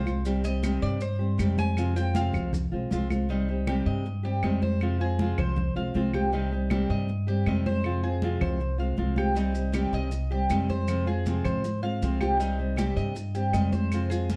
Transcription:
Already playing: upright bass C2, cuban tres C5
0.05 nylon-string guitar G#3 C4 F4, high conga, claves, maracas
0.25 nylon-string guitar C3 D#3 G3 C4 G4, maracas
0.44 nylon-string guitar G3 C4 G4, cuban tres D#5, high conga, maracas
0.62 nylon-string guitar C3 D#3 G3 C4 G4, high conga, claves, maracas
0.82 upright bass G2, cuban tres D5, maracas
1.00 cuban tres C5, muted nylon-string guitar stroke, high conga, maracas
1.19 nylon-string guitar G3 C4 G4, high conga
1.38 upright bass F2, nylon-string guitar C3 D#3 G3 C4 G4, high conga, claves, maracas
1.58 nylon-string guitar G3 C4 G4, cuban tres G#5, high conga, maracas
1.76 nylon-string guitar C3 F3 G#3 C4 F4, claves, maracas
1.95 nylon-string guitar G#3 C4 F4, cuban tres G5, high conga, maracas
2.14 nylon-string guitar C3 F3 G#3 C4 F4, cuban tres F5, high conga, maracas
2.34 upright bass C2, low conga, claves, maracas
2.53 muted nylon-string guitar stroke, high conga, low conga, maracas
2.72 upright bass B1, nylon-string guitar G#3 C4 F4, high conga
2.90 upright bass C2, nylon-string guitar C3 F3 G#3 C4 F4, high conga, maracas
3.10 nylon-string guitar G#3 C4 F4, high conga, claves, maracas
3.29 nylon-string guitar C3 D#3 G3 C4 G4, cuban tres D#4, high conga
3.48 nylon-string guitar G3 C4 G4, high conga
3.67 nylon-string guitar C3 D#3 G3 C4 G4, cuban tres G4, high conga, claves
3.86 upright bass G2, cuban tres D#5
4.05 muted nylon-string guitar stroke, high conga
4.23 nylon-string guitar G3 C4 G4, cuban tres G4, high conga
4.42 upright bass F2, nylon-string guitar C3 D#3 G3 C4 G4, cuban tres D#5, high conga, claves
4.61 nylon-string guitar G3 C4 G4, cuban tres C5, high conga
4.80 nylon-string guitar C3 F3 G#3 C4 F4, high conga, claves
4.99 nylon-string guitar G#3 C4 F4, cuban tres G#4, high conga
5.19 nylon-string guitar C3 F3 G#3 C4 F4, high conga
5.38 upright bass C2, cuban tres C5, low conga, claves
5.56 muted nylon-string guitar stroke, high conga, low conga
5.76 upright bass B1, nylon-string guitar G#3 C4 F4, cuban tres F5, high conga
5.94 upright bass C2, nylon-string guitar C3 F3 G#3 C4 F4, high conga
6.13 nylon-string guitar G#3 C4 F4, cuban tres G4, high conga, claves
6.32 nylon-string guitar C3 D#3 G3 C4 G4, cuban tres D#4, high conga
6.52 nylon-string guitar G3 C4 G4, high conga
6.70 nylon-string guitar C3 D#3 G3 C4 G4, cuban tres G4, high conga, claves
6.90 upright bass G2, cuban tres D#5
7.08 muted nylon-string guitar stroke, high conga
7.27 nylon-string guitar G3 C4 G4, cuban tres G4, high conga
7.46 upright bass F2, nylon-string guitar C3 D#3 G3 C4 G4, cuban tres D#5, high conga, claves
7.66 nylon-string guitar G3 C4 G4, cuban tres C5, high conga
7.84 nylon-string guitar C3 F3 G#3 C4 F4, high conga, claves
8.03 nylon-string guitar G#3 C4 F4, cuban tres G#4, high conga
8.22 nylon-string guitar C3 F3 G#3 C4 F4, high conga
8.41 upright bass C2, cuban tres C5, low conga, claves
8.60 muted nylon-string guitar stroke, high conga
8.78 nylon-string guitar G#3 C4 F4, cuban tres F5, high conga
8.97 upright bass C2, nylon-string guitar C3 F3 G#3 C4 F4, high conga
9.16 nylon-string guitar G#3 C4 F4, cuban tres G4, high conga, claves
9.34 nylon-string guitar C3 D#3 G3 C4 G4, cuban tres D#4, maracas
9.54 nylon-string guitar G3 C4 G4, high conga, maracas
9.72 nylon-string guitar C3 D#3 G3 C4 G4, cuban tres G4, high conga, claves, maracas
9.92 upright bass C2, cuban tres D#5, maracas
10.11 muted nylon-string guitar stroke, high conga, maracas
10.30 nylon-string guitar G3 C4 G4, cuban tres G4, high conga
10.49 upright bass F2, nylon-string guitar C3 D#3 G3 C4 G4, cuban tres D#5, high conga, claves, maracas
10.69 nylon-string guitar G3 C4 G4, cuban tres C5, high conga, maracas
10.87 nylon-string guitar C3 F3 G#3 C4 F4, high conga, claves, maracas
11.06 nylon-string guitar G#3 C4 F4, cuban tres G#4, high conga
11.26 nylon-string guitar C3 F3 G#3 C4 F4, high conga, maracas
11.45 upright bass G#2, cuban tres C5, low conga, claves, maracas
11.64 muted nylon-string guitar stroke, high conga, maracas
11.82 nylon-string guitar G#3 C4 F4, cuban tres F5, high conga
12.02 upright bass C2, nylon-string guitar C3 F3 G#3 C4 F4, high conga, maracas
12.20 nylon-string guitar G#3 C4 F4, cuban tres G4, high conga, claves, maracas
12.39 nylon-string guitar C3 D#3 G3 C4 G4, cuban tres D#4, high conga, maracas
12.59 nylon-string guitar G3 C4 G4, high conga
12.76 nylon-string guitar C3 D#3 G3 C4 G4, cuban tres G4, high conga, claves, maracas
12.96 upright bass G2, cuban tres D#5, maracas
13.15 muted nylon-string guitar stroke, high conga, maracas
13.35 nylon-string guitar G3 C4 G4, cuban tres G4, high conga, maracas
13.53 upright bass F2, nylon-string guitar C3 D#3 G3 C4 G4, cuban tres D#5, high conga, claves, maracas
13.72 nylon-string guitar G3 C4 G4, cuban tres C5, high conga, maracas
13.92 nylon-string guitar C3 F3 G#3 C4 F4, high conga, claves, maracas
14.10 nylon-string guitar G#3 C4 F4, cuban tres G#4, high conga, maracas
14.30 nylon-string guitar C3 F3 G#3 C4 F4, high conga, maracas

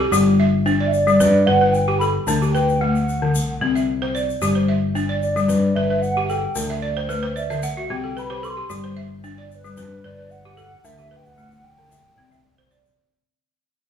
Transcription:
Already playing: balafon A4
0.00 balafon G4
0.12 picked electric bass G1, balafon G3 G4, shaker
0.40 balafon E5
0.66 balafon D4, shaker
0.80 balafon D5
0.86 flute E5
0.93 flute D5, shaker
1.07 balafon G3, shaker
1.20 picked electric bass G2, balafon B4, shaker
1.46 picked electric bass G1, balafon B4, flute F#5
1.61 balafon B4
1.73 flute G5, shaker
1.88 balafon G4
1.99 balafon A4, flute B5, shaker
2.27 picked electric bass D2, balafon D3 D4, flute A5, shaker
2.42 balafon G4, shaker
2.53 balafon B4, flute G5, shaker
2.69 shaker
2.80 balafon A3, flute F#5
2.96 shaker
3.09 shaker
3.22 balafon D3
3.35 picked electric bass C2, shaker
3.61 picked electric bass C2, balafon C4
3.75 balafon E5, shaker
4.02 balafon C5
4.15 balafon D5, shaker
4.30 shaker
4.42 picked electric bass G1, balafon G3 G4, shaker
4.55 balafon C5
4.68 balafon E5
4.95 balafon D4, shaker
5.09 balafon D5
5.22 flute D5, shaker
5.36 balafon G3, shaker
5.48 picked electric bass G2, balafon B4, shaker
5.75 picked electric bass G1, balafon B4, flute E5
5.90 balafon B4
6.02 flute F#5, shaker
6.17 balafon G4
6.29 balafon A4, flute G5, shaker
6.56 picked electric bass D2, balafon D3, shaker
6.70 balafon E5
6.82 balafon D5
6.97 balafon C5
7.09 balafon A3 B4, shaker
7.23 balafon C5
7.36 balafon D5, flute E5, shaker
7.50 balafon D3 E5, shaker
7.63 picked electric bass C2, balafon F#5, shaker
7.77 balafon F#4
7.90 picked electric bass C2, balafon C4 G4, flute G5
8.04 balafon A4
8.17 balafon B4, flute B5, shaker
8.25 flute B5
8.30 balafon G4 C5, flute B5
8.43 balafon A4, flute D6, shaker
8.49 flute C6
8.57 balafon G4
8.70 picked electric bass G1, balafon G3 G4, shaker
8.84 balafon C5
8.97 balafon E5
9.24 balafon D4, shaker
9.38 balafon D5
9.51 flute D5, shaker
9.55 flute B4
9.64 balafon G3, shaker
9.77 picked electric bass G2, balafon B4, shaker
10.04 picked electric bass G1, balafon B4, flute D5
10.18 balafon B4
10.31 flute F#5, shaker
10.45 balafon G4
10.57 balafon A4, shaker
10.84 picked electric bass D2, balafon D3 D4, flute E5, shaker
10.98 balafon G4
11.11 balafon B4
11.17 flute G5
11.25 flute F#5, shaker
11.38 balafon A3, shaker
11.52 shaker
11.64 flute G5
11.78 balafon D3
11.91 picked electric bass C2, balafon E5, shaker
12.18 picked electric bass C2, balafon C4
12.32 balafon E5, shaker
12.58 balafon C5
12.71 balafon D5, shaker
12.85 shaker

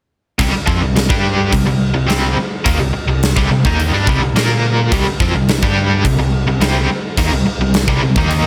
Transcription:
0.38 picked electric bass C2, overdriven electric guitar C3 G3, kick, crash
0.52 muted overdriven electric guitar stroke, muted picked electric bass stroke
0.66 picked electric bass F2, overdriven electric guitar F3 C4, kick
0.81 picked electric bass C2, overdriven electric guitar C3 G3
0.95 picked electric bass C2, overdriven electric guitar C3 G3, snare, crash
1.09 picked electric bass G2, overdriven electric guitar G3 D4 G4, kick
1.52 picked electric bass C2, overdriven electric guitar C3 G3, kick, crash
1.66 picked electric bass C2, overdriven electric guitar C3 G3
1.94 picked electric bass C2, overdriven electric guitar C3 G3
2.07 picked electric bass C2, overdriven electric guitar C3 G3 C4, snare, crash
2.37 muted overdriven electric guitar stroke, muted picked electric bass stroke
2.65 picked electric bass D#2, overdriven electric guitar D#3 A#3, kick, crash
2.79 picked electric bass C2, overdriven electric guitar C3 G3
2.94 muted picked electric bass stroke, muted overdriven electric guitar stroke
3.07 picked electric bass C2, overdriven electric guitar C3 G3
3.23 snare, crash
3.36 picked electric bass C2, overdriven electric guitar C3 G3, kick
3.50 picked electric bass C2, overdriven electric guitar C3 G3
3.65 picked electric bass D#2, overdriven electric guitar D#3 A#3 D#4, kick
3.79 crash
3.91 picked electric bass G2, overdriven electric guitar G3 D4
4.07 picked electric bass C2, overdriven electric guitar C3 G3, kick
4.21 picked electric bass C2, overdriven electric guitar C3 G3
4.34 picked electric bass A#2, overdriven electric guitar A#3 F4 A#4, snare, crash
4.92 picked electric bass C2, overdriven electric guitar C3 G3, kick, crash
5.06 muted picked electric bass stroke, muted overdriven electric guitar stroke
5.20 picked electric bass F2, overdriven electric guitar F3 C4, kick
5.33 picked electric bass C2, overdriven electric guitar C3 G3
5.47 picked electric bass C2, overdriven electric guitar C3 G3, snare, crash
5.62 picked electric bass G2, overdriven electric guitar G3 D4 G4, kick
6.05 picked electric bass C2, overdriven electric guitar C3 G3, kick, crash
6.18 picked electric bass C2, overdriven electric guitar C3 G3
6.46 picked electric bass C2, overdriven electric guitar C3 G3
6.60 picked electric bass C2, overdriven electric guitar C3 G3 C4, snare, crash
6.89 muted picked electric bass stroke, muted overdriven electric guitar stroke
7.17 picked electric bass D#2, overdriven electric guitar D#3 A#3, kick, crash
7.31 picked electric bass C2, overdriven electric guitar C3 G3
7.44 muted picked electric bass stroke, muted overdriven electric guitar stroke
7.59 picked electric bass C2, overdriven electric guitar C3 G3
7.74 snare, crash
7.87 picked electric bass C2, overdriven electric guitar C3 G3, kick
8.02 picked electric bass C2, overdriven electric guitar C3 G3
8.16 picked electric bass D#2, overdriven electric guitar D#3 A#3 D#4, kick
8.30 crash
8.42 picked electric bass G2

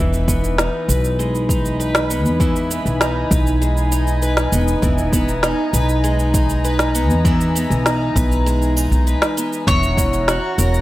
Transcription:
Already playing: upright bass E1, twelve-string acoustic guitar E3 B3 D#4 B4, analog synth pad D#4 G#5 B5
0.14 cabasa
0.28 twelve-string acoustic guitar B3, kick, cabasa
0.44 cabasa
0.58 twelve-string acoustic guitar D#4, snare, cabasa
0.89 upright bass B1, twelve-string acoustic guitar B4, cabasa
1.04 cabasa
1.19 twelve-string acoustic guitar G#3, cabasa
1.35 cabasa
1.49 twelve-string acoustic guitar D#4, kick, cabasa
1.65 cabasa
1.80 twelve-string acoustic guitar B4, cabasa
1.95 snare, cabasa
2.10 twelve-string acoustic guitar B3, cabasa
2.25 upright bass E2, cabasa
2.40 twelve-string acoustic guitar E3, kick, cabasa
2.56 cabasa
2.71 twelve-string acoustic guitar B3, cabasa
2.86 upright bass B1, cabasa
3.01 twelve-string acoustic guitar D#4, snare, cabasa
3.31 upright bass B1, twelve-string acoustic guitar B4, kick, cabasa
3.47 cabasa
3.62 twelve-string acoustic guitar G#3, cabasa
3.77 cabasa
3.92 twelve-string acoustic guitar D#4, cabasa
4.07 cabasa
4.22 twelve-string acoustic guitar B4, cabasa
4.37 snare, cabasa
4.52 upright bass E1, twelve-string acoustic guitar B3, cabasa
4.68 cabasa
4.82 upright bass E1, twelve-string acoustic guitar E3, analog synth pad A#5, kick, cabasa
4.98 cabasa
5.13 twelve-string acoustic guitar B3, kick, cabasa
5.29 cabasa
5.43 twelve-string acoustic guitar D#4, snare, cabasa
5.73 upright bass B1, twelve-string acoustic guitar B4, cabasa
5.89 cabasa
6.04 twelve-string acoustic guitar G#3, cabasa
6.19 cabasa
6.34 twelve-string acoustic guitar D#4, kick, cabasa
6.50 cabasa
6.65 twelve-string acoustic guitar B4, cabasa
6.79 snare, cabasa
6.95 twelve-string acoustic guitar B3, cabasa
7.10 upright bass E2, cabasa
7.25 twelve-string acoustic guitar E3, kick, cabasa
7.41 cabasa
7.55 twelve-string acoustic guitar B3, cabasa
7.70 upright bass B1, cabasa
7.86 twelve-string acoustic guitar D#4, snare, cabasa
8.16 upright bass B1, twelve-string acoustic guitar B4, kick, cabasa
8.32 cabasa
8.46 twelve-string acoustic guitar G#3, cabasa
8.62 cabasa
8.77 twelve-string acoustic guitar D#4, cabasa
8.92 upright bass B1, cabasa
9.07 twelve-string acoustic guitar B4, cabasa
9.22 snare, cabasa
9.37 twelve-string acoustic guitar B3, cabasa
9.53 cabasa
9.66 upright bass E1, twelve-string acoustic guitar E3, analog synth pad C#5 F#5 A#5, mandolin C#5, kick, cabasa
9.83 cabasa
9.97 twelve-string acoustic guitar C#4, kick, cabasa
10.13 cabasa
10.28 twelve-string acoustic guitar F#4, snare, cabasa
10.58 upright bass E1, twelve-string acoustic guitar A#4, cabasa
10.74 cabasa

